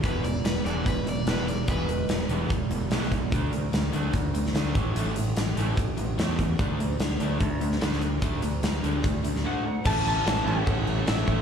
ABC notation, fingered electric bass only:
X:1
M:4/4
L:1/8
Q:1/4=147
K:A
V:1 name="Fingered electric bass" clef=bass
E,,, E,,, E,,, E,,, E,,,2 E,,,2 | E,,, E,,, E,,, E,,, E,,, E,,, B,,,2 | D,, D,, D,, D,, D,,2 D,, A,,, | A,,, A,,, A,,, A,,, A,,, A,,, E,,2 |
D,, D,, D,, D,, D,,2 D,,2 | D,, D,, D,, D,, D,, D,, z2 | A,,, A,,, A,,, A,,, A,,, A,,, A,,, A,,, |]